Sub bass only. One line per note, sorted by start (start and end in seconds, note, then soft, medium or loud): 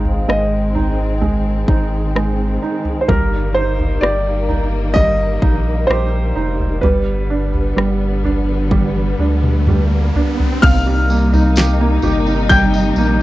0.00 0.25 G#1 medium
0.29 1.65 G#1 medium
1.68 2.58 G#1 medium
3.09 3.98 G1 loud
4.02 5.38 G1 medium
5.42 5.86 A#1 medium
5.89 6.33 A#1 medium
6.36 6.80 F1 medium
6.83 7.73 G1 medium
7.77 9.15 G1 loud
9.19 10.11 D2 medium
10.63 11.98 C2 loud
12.03 12.92 G1 medium
12.96 13.23 A#1 medium